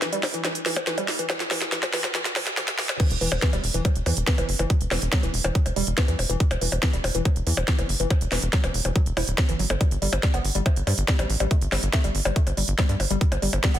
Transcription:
0.02 E3, snare, closed hi-hat
0.13 G3, closed hi-hat
0.23 snare, open hi-hat, percussion blips
0.34 E3, closed hi-hat
0.44 E3, snare, closed hi-hat, percussion blips
0.55 closed hi-hat
0.66 E3, snare, open hi-hat
0.76 closed hi-hat, percussion blips
0.87 E3, snare, closed hi-hat
0.98 G3, closed hi-hat, percussion blips
1.08 snare, open hi-hat
1.19 E3, closed hi-hat
1.30 E3, snare, closed hi-hat, percussion blips
1.40 snare, closed hi-hat
1.51 E3, snare, open hi-hat, percussion blips
1.62 snare, closed hi-hat
1.72 E3, snare, closed hi-hat
1.83 snare, closed hi-hat, percussion blips
1.93 E3, snare, open hi-hat
2.04 snare, closed hi-hat, percussion blips
2.15 E3, snare, closed hi-hat
2.25 snare, closed hi-hat
2.36 E3, snare, open hi-hat, percussion blips
2.47 snare, closed hi-hat
2.57 E3, snare, closed hi-hat, percussion blips
2.68 snare, closed hi-hat
2.79 E3, snare, open hi-hat
2.89 snare, closed hi-hat, percussion blips
3.00 E3, kick, closed hi-hat, crash, percussion blips
3.10 E1, closed hi-hat
3.21 E1 E3, open hi-hat
3.32 E1, closed hi-hat, percussion blips
3.42 E3, kick, snare, closed hi-hat
3.53 E1 G3, closed hi-hat, percussion blips
3.64 E1, open hi-hat
3.74 E1 E3, closed hi-hat
3.85 F#3, kick, closed hi-hat, percussion blips
3.96 E1, closed hi-hat
4.06 E2 E3, open hi-hat, percussion blips
4.17 E1, closed hi-hat
4.27 E3, kick, snare, closed hi-hat
4.38 F#1 E3, closed hi-hat, percussion blips
4.49 F#1, open hi-hat
4.59 F#1 E3, closed hi-hat, percussion blips
4.70 F#3, kick, closed hi-hat
4.81 E1, closed hi-hat
4.91 E1 E3, snare, open hi-hat, percussion blips
5.02 E1, closed hi-hat
5.13 F#3, kick, snare, closed hi-hat, percussion blips
5.23 E1 E3, closed hi-hat
5.34 E1, open hi-hat
5.44 E1 E3, closed hi-hat, percussion blips
5.55 F#3, kick, closed hi-hat
5.66 E1, closed hi-hat, percussion blips
5.76 E1 G3, open hi-hat
5.87 E1, closed hi-hat
5.98 E3, kick, snare, closed hi-hat, percussion blips
6.08 E2 E3, closed hi-hat
6.19 E1, open hi-hat, percussion blips
6.30 E1 E3, closed hi-hat
6.40 E3, kick, closed hi-hat
6.51 E1, closed hi-hat, percussion blips
6.61 E1 E3, open hi-hat
6.72 E1, closed hi-hat, percussion blips
6.83 E3, kick, snare, closed hi-hat
6.93 E1 G3, closed hi-hat
7.04 E1, open hi-hat, percussion blips
7.15 E1 E3, closed hi-hat
7.25 F#3, kick, closed hi-hat, percussion blips
7.36 E1, closed hi-hat
7.47 E2 E3, open hi-hat
7.57 E1, closed hi-hat, percussion blips
7.68 E3, kick, snare, closed hi-hat
7.79 F#1 E3, closed hi-hat, percussion blips
7.89 F#1, open hi-hat
8.00 F#1 E3, closed hi-hat
8.10 F#3, kick, closed hi-hat, percussion blips
8.21 E1, closed hi-hat
8.32 E1 E3, snare, open hi-hat, percussion blips
8.42 E1, closed hi-hat
8.53 F#3, kick, snare, closed hi-hat
8.64 E1 E3, closed hi-hat, percussion blips
8.74 E1, open hi-hat
8.85 E1 E3, closed hi-hat, percussion blips
8.96 F#3, kick, closed hi-hat
9.06 E1, closed hi-hat
9.17 E1 E4, open hi-hat, percussion blips
9.27 D1, closed hi-hat
9.38 F#3, kick, snare, closed hi-hat, percussion blips
9.49 G1 E3, closed hi-hat
9.59 G1 F#3, open hi-hat
9.70 G1 D3, closed hi-hat, percussion blips
9.81 G3, kick, closed hi-hat, percussion blips
9.91 G1, closed hi-hat
10.02 G1 G3, open hi-hat
10.13 G1, closed hi-hat, percussion blips
10.23 G3, kick, snare, closed hi-hat
10.34 G1 B3, closed hi-hat, percussion blips
10.45 G1, open hi-hat
10.55 G1 G3, closed hi-hat
10.66 A3, kick, closed hi-hat, percussion blips
10.76 G1, closed hi-hat
10.87 G2 G3, open hi-hat, percussion blips
10.98 G1, closed hi-hat
11.08 G3, kick, snare, closed hi-hat
11.19 A1 G3, closed hi-hat, percussion blips
11.30 A1, open hi-hat
11.40 A1 G3, closed hi-hat, percussion blips
11.51 A3, kick, closed hi-hat
11.62 G1, closed hi-hat
11.72 G1 G3, snare, open hi-hat, percussion blips
11.83 G1, closed hi-hat
11.93 A3, kick, snare, closed hi-hat, percussion blips
12.04 G1 G3, closed hi-hat
12.15 G1, open hi-hat
12.25 G1 G3, closed hi-hat, percussion blips
12.36 A3, kick, closed hi-hat
12.47 G1, closed hi-hat, percussion blips
12.57 G1 G3, open hi-hat
12.68 G1, closed hi-hat
12.79 G3, kick, snare, closed hi-hat, percussion blips
12.89 G2 G3, closed hi-hat
13.00 G1, open hi-hat, percussion blips
13.10 G1 G3, closed hi-hat
13.21 kick, closed hi-hat
13.32 G1, closed hi-hat, percussion blips
13.42 G1 G3, open hi-hat
13.53 G1, closed hi-hat, percussion blips
13.64 G3, kick, snare, closed hi-hat
13.74 G1 B3, closed hi-hat

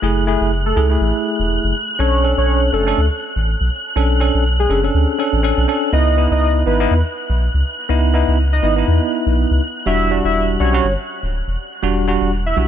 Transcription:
Already playing: F#6
0.02 F#1 A3 E4 G#4
0.27 A3 E4 G#4
0.41 F#1
0.66 A4
0.76 C#2 A3 E4 G#4
0.89 A3 E4 G#4
1.01 A1
1.40 E1
1.64 F#1
1.99 B1 C#4 D4 A4 C#5
2.24 C#4 D4 A4
2.38 B1 C#5
2.73 F#1 C#4 D4 A4
2.87 C#4 D4 A4
2.98 D2
3.36 A1
3.61 B1
3.96 B1 C#4 D4 A4
4.20 C#4 D4 A4
4.35 B1
4.59 G#4
4.69 F#1 C#4 D4 A4
4.83 C#4 D4 A4
4.95 D2
5.19 C#4 D4 A4
5.33 A1
5.43 C#4 D4 A4
5.58 B1
5.68 C#4 D4 A4
5.92 C#2 B3 D#4 E4 D#5
6.17 B3 D#4 E4
6.31 C#2 D#5
6.66 G#1 B3 D#4 E4 B4
6.80 B3 D#4 E4
6.91 E2
7.30 B1
7.54 C#2
7.89 C#2 B3 D#4 E4
8.14 B3 D#4 E4
8.28 C#2
8.53 D#5
8.63 G#1 B3 D#4 E4
8.76 B3 D#4 E4
8.88 E2
9.27 B1
9.51 C#2
9.86 E1 G3 D4 F#4 E5
10.10 G3 D4 F#4
10.25 E1 E5
10.60 B1 G3 D4 F#4 C#5
10.74 G3 D4 F#4
10.85 G1
11.23 D1
11.48 E1
11.83 E1 G3 D4 F#4
12.07 G3 D4 F#4
12.22 E1
12.46 E5
12.56 B1 G3 D4 F#4

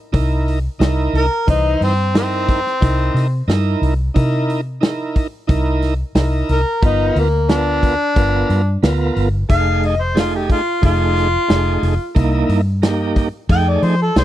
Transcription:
0.13 C2 D#4 E4 A#4, kick, open hi-hat
0.48 open hi-hat
0.79 C2 D#4 E4 A#4, snare, open hi-hat
1.13 C2 A#4, open hi-hat
1.47 C2 E3 D#4 C5, kick, open hi-hat
1.81 G2 C4, open hi-hat
2.14 C4 D#4 E4 A#4, snare, open hi-hat
2.49 kick, open hi-hat
2.67 snare
2.81 C2 D#4 E4 A#4, kick, open hi-hat
3.14 C3, snare, open hi-hat
3.48 G2 D#4 E4 A#4, snare, open hi-hat
3.82 C2, open hi-hat
4.14 C3 D#4 E4 A#4, kick, open hi-hat
4.50 open hi-hat
4.81 D#4 E4 A#4, snare, open hi-hat
5.16 kick, open hi-hat
5.47 C2 D#4 E4 A#4, kick, open hi-hat
5.82 snare, open hi-hat
6.15 C2 D#4 E4 A#4, snare, open hi-hat
6.49 C2 A#4, open hi-hat
6.82 G1 B3 D#4 F4 A#4, kick, open hi-hat
7.16 D2 A#3, open hi-hat
7.49 B3 D4 F4 A#4, snare, open hi-hat
7.83 kick, open hi-hat
8.16 G1 B3 F4 A#4, kick, open hi-hat
8.50 G2, snare, open hi-hat
8.83 D2 B3 F4 A#4, snare, open hi-hat
9.16 G1, open hi-hat
9.49 F1 A3 D#4 G#4 F5, kick, open hi-hat
9.83 D#5, open hi-hat
10.02 C5
10.15 A3 D#4 G#4, snare, open hi-hat
10.19 F4
10.35 G4
10.50 F4, kick, open hi-hat
10.81 F1 A3 D#4 G#4, kick, open hi-hat
10.86 F4
11.17 snare, open hi-hat
11.48 F1 A3 D#4 G#4, snare, open hi-hat
11.83 F1, open hi-hat
12.15 C2 A#3 D#4 E4, kick, open hi-hat
12.49 G2, open hi-hat
12.82 A#3 D#4 G4, snare, open hi-hat
13.16 kick, open hi-hat
13.49 F2 A3 D#4 G#4 G5, kick, open hi-hat
13.69 D5
13.83 F3 C5, open hi-hat
14.02 A4
14.16 C2 A3 D#4 G#4 C5, snare, open hi-hat

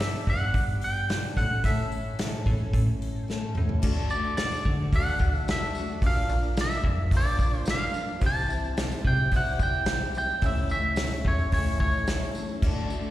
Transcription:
Already playing: G2 E5
0.00 G3 B3 D4 G4, snare, open hi-hat
0.27 G2 G3 B3 D4 G4 F#5, kick, open hi-hat
0.54 G2, kick, open hi-hat
0.81 G5, open hi-hat
1.09 G3 B3 D4 G4, snare, open hi-hat
1.36 A2 A3 C#4 A4 F#5, kick, open hi-hat
1.64 A2 E3 A3 C#4 A4 E5, kick, open hi-hat
1.92 C#4 A4, open hi-hat
1.96 A3
2.19 E3 A3 C#4, snare, open hi-hat
2.24 A4
2.46 A2 C#4 A4, kick, open hi-hat
2.50 A3
2.73 A2, kick, open hi-hat
3.02 open hi-hat
3.28 E3 A3 C#4 A4, snare
3.53 G3 A4, mid tom
3.57 E2 A3 B3 C#4
3.62 C4 D4
3.67 E4 F4, floor tom
3.73 G4 A4
3.78 D3 B4 C5
3.83 D2 A3 D4 F#4 A4 D5, kick, crash
3.98 tambourine
4.10 A3 D4 F#4 D5, tambourine
4.24 tambourine
4.37 D5, snare, open hi-hat, tambourine
4.51 tambourine
4.65 D3 A3 D4 F#4, kick
4.92 D2 D3 A3 D4 F#4 F#5, kick, open hi-hat
5.06 tambourine
5.19 D2 D4 F#4, kick, tambourine
5.25 A3
5.35 E5, tambourine
5.48 D3 A3 D4 F#4 E5, snare, open hi-hat, tambourine
5.63 tambourine
5.75 A3 D4 F#4, tambourine
5.89 tambourine
6.02 A#1 A#2 D3 A#3 D4 F4 A#4 D5, kick, open hi-hat
6.06 F5
6.17 tambourine
6.29 A#1 A#3 D4 F4, tambourine
6.43 tambourine
6.57 snare, open hi-hat, tambourine
6.61 E5
6.71 tambourine
6.84 F2, kick
7.11 A#1 A#2 D3 A#3 D4 F4, kick, open hi-hat
7.17 D5
7.26 tambourine
7.39 A#1 D4 F4, kick, tambourine
7.43 A#3
7.53 tambourine
7.60 C5
7.66 D3 A#3 D4, snare, open hi-hat, tambourine
7.70 F4 F5
7.81 tambourine
7.94 A#3 D4 F4, tambourine
8.08 tambourine
8.19 C2 C3 E3 G3 C4 E4 G4 C5, kick, open hi-hat
8.23 C4 E4 A5
8.36 tambourine
8.48 G3 C4 E4, tambourine
8.64 tambourine
8.77 snare, open hi-hat, tambourine
8.92 tambourine
9.05 C3 G5, kick
9.31 C2 C3 E3 G3 C4 E4, kick, open hi-hat
9.36 F#5
9.47 tambourine
9.59 C2 C4 E4 G5, kick, tambourine
9.64 G3
9.73 tambourine
9.86 E3, snare, open hi-hat, tambourine
9.90 G3 C4 E4
10.02 tambourine
10.15 G3 C4 E4 G5, tambourine
10.30 tambourine
10.42 C#2 C#3 E3 A3 C#4 E4, kick, open hi-hat, tambourine
10.46 E4 A4 C#5 E5
10.70 C#2 C#4 E4 E5, tambourine
10.75 A3
10.96 snare, open hi-hat, tambourine
11.11 tambourine
11.25 E2 C#5, kick, tambourine
11.39 tambourine
11.52 C#2 C#3 E3 A3 C#4 E4 C#5, kick, open hi-hat
11.67 tambourine
11.80 C#2 A3 C#4 E4 C#5, kick
11.94 tambourine
12.07 E3 A3 C#4 E4, snare, open hi-hat, tambourine
12.22 tambourine
12.35 A3 C#4 E4, tambourine
12.49 tambourine
12.62 D2 D3 A3 D4 F#4 A4 D5, kick, crash
12.76 tambourine
12.90 D4 F#4, tambourine
12.94 A3
13.03 tambourine

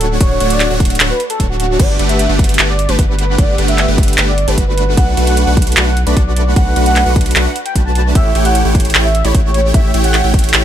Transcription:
Already playing: D1 A3 D4 F#4 A4 C#5 F#5
0.01 closed hi-hat
0.21 D1 A3 D4 F#4 C#5 F#5, kick, closed hi-hat
0.40 D1 A3 D4 F#4 C#5 F#5, closed hi-hat
0.50 D5, closed hi-hat
0.60 clap, closed hi-hat
0.70 D1 A3 D4 F#4 C#5 F#5
0.80 kick, closed hi-hat
0.85 closed hi-hat
0.90 closed hi-hat
0.95 closed hi-hat
1.00 D1 A3 D4 F#4 C#5 F#5, clap, closed hi-hat
1.10 B4
1.20 closed hi-hat
1.30 A4, closed hi-hat
1.40 D1 A3 D4 F#4 C#5 A5, kick, closed hi-hat
1.50 F#4
1.60 closed hi-hat
1.80 G1 A3 D4 G4 B4 D5 F#5, kick, closed hi-hat, crash
1.99 G1 A3 D4 G4 B4 F#5, closed hi-hat
2.09 E5, closed hi-hat
2.19 closed hi-hat
2.29 G1 A3 D4 G4 B4 F#5
2.39 kick, closed hi-hat
2.44 closed hi-hat
2.49 closed hi-hat
2.54 closed hi-hat
2.59 G1 A3 D4 G4 B4 F#5, clap, closed hi-hat
2.69 D5
2.79 closed hi-hat
2.89 G1 A3 D4 G4 B4 A5, closed hi-hat
2.99 G1 A3 D4 G4 B4 F#5, kick, closed hi-hat
3.09 B4
3.19 closed hi-hat
3.38 G1 A3 D4 G4 B4 D5, kick, closed hi-hat
3.58 G1 A3 D4 G4 B4 F#5, closed hi-hat
3.68 E5, closed hi-hat
3.78 clap, closed hi-hat
3.88 G1 A3 D4 G4 B4 F#5
3.98 kick, closed hi-hat
4.03 closed hi-hat
4.08 closed hi-hat
4.13 closed hi-hat
4.18 G1 A3 D4 G4 B4 F#5, clap, closed hi-hat
4.28 D5
4.38 closed hi-hat
4.48 G1 A3 D4 G4 B4 A5, closed hi-hat
4.58 G1 A3 D4 F#4 B4 F#5, kick, closed hi-hat
4.68 B4
4.78 closed hi-hat
4.97 B1 A3 D4 F#4 B4 F#5, kick, closed hi-hat
5.17 B1 A3 D4 F#4 B4 F#5, closed hi-hat
5.27 F#5, closed hi-hat
5.37 closed hi-hat
5.47 B1 A3 D4 F#4 B4 F#5
5.57 kick, closed hi-hat
5.62 closed hi-hat
5.67 closed hi-hat
5.72 closed hi-hat
5.77 B1 A3 D4 F#4 B4 F#5, clap, closed hi-hat
5.87 F#5
5.97 closed hi-hat
6.07 B1 A3 D4 F#4 B4 D5 B5, closed hi-hat
6.17 B1, kick, closed hi-hat
6.27 D5
6.36 closed hi-hat
6.56 B1 F#4 B4 F#5, kick, closed hi-hat
6.76 B1 A3 D4 F#4 B4 F#5, closed hi-hat
6.86 F#5, closed hi-hat
6.96 clap, closed hi-hat
7.06 B1 A3 D4 F#4 B4 F#5
7.16 kick, closed hi-hat
7.21 closed hi-hat
7.26 closed hi-hat
7.31 closed hi-hat
7.36 B1 A3 D4 F#4 B4 F#5, clap, closed hi-hat
7.46 F#5
7.56 closed hi-hat
7.66 G5, closed hi-hat
7.76 B1 A3 D4 F#4 B4 A5, kick, closed hi-hat
7.86 A5
7.95 closed hi-hat
8.15 A1 A3 E4 G4 C#5 E5 G5, kick, closed hi-hat
8.35 A1 A3 E4 G4 C#5 G5, closed hi-hat
8.45 F#5, closed hi-hat
8.55 closed hi-hat
8.65 A1 A3 E4 G4 C#5 G5
8.75 kick, closed hi-hat
8.80 closed hi-hat
8.85 closed hi-hat
8.90 closed hi-hat
8.95 A1 A3 E4 G4 C#5 G5, clap, closed hi-hat
9.05 E5
9.15 closed hi-hat
9.25 A1 A3 E4 G4 C#5 B5, closed hi-hat
9.34 A1 A3 G4 C#5 G5, kick, closed hi-hat
9.45 C#5
9.54 closed hi-hat
9.74 A1 A3 E4 G4 C#5 E5 G5, kick, closed hi-hat
9.94 A1 A3 E4 G4 C#5 G5, closed hi-hat
10.04 F#5, closed hi-hat
10.14 clap, closed hi-hat
10.24 A1 A3 E4 G4 C#5 G5
10.34 kick, closed hi-hat
10.39 closed hi-hat
10.44 closed hi-hat
10.49 closed hi-hat
10.54 A1 A3 E4 G4 C#5 G5, clap, closed hi-hat

